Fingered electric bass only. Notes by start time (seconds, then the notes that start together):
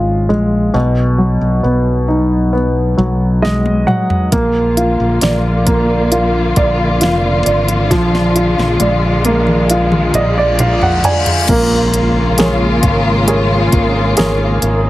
Already playing: G#1
0.30 A#1
0.74 B1
1.41 B1
1.64 B1
2.98 B1
4.33 A#1
5.00 A#1
5.22 A#1
6.57 A#1
7.01 F1
7.46 G#1
7.91 A#1
8.58 A#1
8.80 A#1
10.15 A#1
11.49 A#1
12.83 G#1
13.73 G#1
14.18 G#1
14.62 G#1